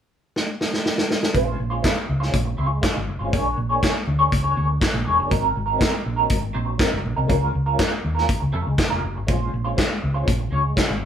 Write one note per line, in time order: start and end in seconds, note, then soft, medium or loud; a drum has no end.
0.36 snare medium
0.61 snare medium
0.73 snare medium
0.86 snare medium
0.98 snare loud
1.10 snare medium
1.23 snare medium
1.34 1.55 A#1 medium
1.34 1.56 G#3 medium
1.34 1.57 C#4 medium
1.34 1.57 F4 medium
1.34 1.57 C5 medium
1.34 kick medium
1.34 closed hi-hat medium
1.58 1.79 A#1 medium
1.58 muted clean electric guitar stroke soft
1.70 1.80 G#3 soft
1.70 1.81 C#4 soft
1.70 1.82 F4 medium
1.70 1.82 C5 medium
1.82 2.03 G#3 medium
1.82 1.94 C#4 medium
1.82 1.94 F4 medium
1.82 1.93 C5 medium
1.82 kick loud
1.82 snare loud
1.82 clap medium
1.82 closed hi-hat medium
1.94 muted clean electric guitar stroke soft
2.08 2.29 C#2 medium
2.08 muted clean electric guitar stroke soft
2.20 2.36 G#3 soft
2.20 2.36 C#4 soft
2.20 2.36 F4 soft
2.20 2.35 C5 medium
2.20 snare soft
2.34 2.54 A#1 medium
2.34 kick loud
2.34 closed hi-hat medium
2.45 muted clean electric guitar stroke medium
2.57 2.79 C#2 medium
2.57 2.78 G#3 medium
2.57 2.69 C#4 medium
2.57 2.69 F4 medium
2.57 2.69 C#5 medium
2.69 muted clean electric guitar stroke soft
2.82 3.01 G#3 medium
2.82 2.94 C#4 medium
2.82 2.93 F4 medium
2.82 2.93 C5 medium
2.82 kick loud
2.82 snare loud
2.82 clap medium
2.82 closed hi-hat medium
2.94 3.09 G#1 medium
2.94 muted clean electric guitar stroke soft
3.06 3.18 F#1 medium
3.06 muted clean electric guitar stroke soft
3.19 3.34 G#1 medium
3.19 3.32 G#3 soft
3.19 3.33 C#4 soft
3.19 3.33 F4 soft
3.19 3.34 C5 soft
3.32 3.53 A#1 medium
3.32 3.55 A#3 medium
3.32 3.56 D4 medium
3.32 3.56 G#4 medium
3.32 3.56 C#5 medium
3.32 kick loud
3.32 closed hi-hat medium
3.57 3.78 A#1 medium
3.57 muted clean electric guitar stroke soft
3.69 3.80 A#3 soft
3.69 3.81 D4 soft
3.69 3.82 G#4 soft
3.69 3.82 C#5 soft
3.81 4.01 A#3 medium
3.81 3.94 D4 medium
3.81 3.94 G#4 medium
3.81 3.93 C#5 medium
3.81 kick medium
3.81 snare loud
3.81 clap medium
3.81 closed hi-hat medium
3.94 muted clean electric guitar stroke soft
4.07 4.27 D2 medium
4.07 muted clean electric guitar stroke soft
4.19 4.30 A#3 soft
4.19 4.31 D4 medium
4.19 4.31 G#4 medium
4.19 4.31 C#5 medium
4.31 4.52 C#2 medium
4.31 muted clean electric guitar stroke soft
4.31 kick loud
4.31 closed hi-hat medium
4.43 4.54 A#3 medium
4.43 4.55 D4 medium
4.43 4.56 G#4 medium
4.43 4.56 C#5 medium
4.55 4.77 D2 medium
4.55 4.71 A#3 medium
4.55 4.69 D4 soft
4.55 4.68 G#4 medium
4.55 4.67 C#5 medium
4.68 muted clean electric guitar stroke soft
4.80 muted clean electric guitar stroke soft
4.80 kick loud
4.80 snare loud
4.80 clap medium
4.80 closed hi-hat medium
4.92 5.04 A#1 medium
4.92 muted clean electric guitar stroke soft
5.05 5.20 E1 medium
5.05 5.18 A#3 medium
5.05 5.18 D4 medium
5.05 5.18 G#4 medium
5.05 5.17 C#5 medium
5.18 5.30 F#1 medium
5.18 5.29 A#3 soft
5.18 5.30 D4 soft
5.18 5.31 G#4 medium
5.18 5.31 C#5 medium
5.30 5.52 G#1 medium
5.30 5.53 F#3 medium
5.30 5.54 C4 medium
5.30 5.54 D#4 medium
5.30 5.54 A#4 medium
5.30 kick loud
5.30 closed hi-hat soft
5.55 5.77 G#1 medium
5.55 muted clean electric guitar stroke soft
5.66 5.77 F#3 soft
5.66 5.78 C4 soft
5.66 5.78 D#4 medium
5.66 5.79 A#4 soft
5.78 5.99 F#3 medium
5.78 5.92 C4 medium
5.78 5.91 D#4 medium
5.78 5.90 A#4 medium
5.78 kick loud
5.78 snare loud
5.78 closed hi-hat medium
5.82 clap medium
5.91 muted clean electric guitar stroke soft
6.04 6.26 A#1 medium
6.04 muted clean electric guitar stroke soft
6.16 6.33 F#3 medium
6.16 6.33 C4 medium
6.16 6.32 D#4 medium
6.16 6.32 A#4 medium
6.30 6.50 G#1 medium
6.30 kick loud
6.30 closed hi-hat medium
6.41 muted clean electric guitar stroke soft
6.53 6.75 A#1 medium
6.53 6.73 F#3 medium
6.53 6.67 C4 medium
6.53 6.66 D#4 medium
6.53 6.67 C5 medium
6.67 muted clean electric guitar stroke soft
6.78 6.98 F#3 medium
6.78 6.91 C4 medium
6.78 6.91 D#4 medium
6.78 6.90 A#4 medium
6.78 kick loud
6.78 snare loud
6.78 clap medium
6.78 closed hi-hat medium
6.91 7.03 F#1 medium
6.91 muted clean electric guitar stroke soft
7.04 7.15 A#1 medium
7.04 muted clean electric guitar stroke soft
7.16 7.28 C2 medium
7.16 7.27 F#3 soft
7.16 7.28 C4 soft
7.16 7.29 D#4 medium
7.16 7.29 A#4 soft
7.28 7.50 C#2 medium
7.28 7.52 G#3 medium
7.28 7.52 C#4 medium
7.28 7.52 F4 medium
7.28 7.53 A#4 medium
7.28 kick loud
7.28 closed hi-hat medium
7.53 7.75 C#2 medium
7.53 muted clean electric guitar stroke soft
7.66 7.77 G#3 soft
7.66 7.77 C#4 soft
7.66 7.78 F4 medium
7.66 7.78 A#4 medium
7.78 7.98 G#3 medium
7.78 7.90 C#4 medium
7.78 7.90 F4 medium
7.78 7.89 A#4 medium
7.78 kick loud
7.78 snare loud
7.78 clap medium
7.78 closed hi-hat medium
7.90 muted clean electric guitar stroke soft
8.03 8.24 D#2 medium
8.03 muted clean electric guitar stroke soft
8.15 8.26 G#3 soft
8.15 8.27 C#4 soft
8.15 8.28 F4 medium
8.15 8.28 A#4 medium
8.15 snare soft
8.28 muted clean electric guitar stroke soft
8.28 kick loud
8.28 closed hi-hat medium
8.40 8.52 C#2 medium
8.40 muted clean electric guitar stroke soft
8.52 8.64 F2 medium
8.52 8.73 G#3 medium
8.52 8.66 C#4 medium
8.52 8.65 F4 medium
8.52 8.64 A#4 medium
8.65 8.77 C#2 medium
8.65 muted clean electric guitar stroke soft
8.78 muted clean electric guitar stroke soft
8.78 kick loud
8.78 snare loud
8.78 clap medium
8.78 closed hi-hat medium
8.90 9.02 F1 medium
8.90 9.01 G#3 medium
8.90 9.02 C#4 medium
8.90 9.02 F4 medium
8.90 9.02 A#4 medium
9.02 9.17 F#1 medium
9.02 muted clean electric guitar stroke soft
9.15 9.26 G#1 medium
9.15 muted clean electric guitar stroke soft
9.27 9.49 A#1 loud
9.27 9.50 G#3 medium
9.27 9.51 C#4 medium
9.27 9.51 F4 medium
9.27 9.52 C5 medium
9.27 kick loud
9.27 closed hi-hat soft
9.52 9.73 A#1 medium
9.52 muted clean electric guitar stroke soft
9.64 9.75 G#3 soft
9.64 9.76 C#4 soft
9.64 9.76 F4 soft
9.64 9.76 C5 medium
9.76 9.96 G#3 medium
9.76 9.89 C#4 medium
9.76 9.89 F4 medium
9.76 9.88 C5 medium
9.76 kick loud
9.76 snare loud
9.76 clap medium
9.76 closed hi-hat medium
9.89 muted clean electric guitar stroke soft
10.02 10.23 C#2 medium
10.02 muted clean electric guitar stroke soft
10.14 10.30 G#3 medium
10.14 10.30 C#4 medium
10.14 10.30 F4 medium
10.14 10.29 C5 medium
10.28 10.48 A#1 medium
10.28 kick loud
10.28 closed hi-hat medium
10.39 muted clean electric guitar stroke soft
10.51 10.72 C#2 medium
10.51 10.70 G#3 medium
10.51 10.64 C#4 medium
10.51 10.63 F4 medium
10.51 10.64 C#5 medium
10.64 muted clean electric guitar stroke soft
10.76 10.96 G#3 medium
10.76 10.89 C#4 medium
10.76 10.88 F4 medium
10.76 10.87 C5 medium
10.76 kick loud
10.76 snare loud
10.76 clap medium
10.76 closed hi-hat soft
10.89 11.03 G#1 medium
10.89 muted clean electric guitar stroke soft
11.01 muted clean electric guitar stroke soft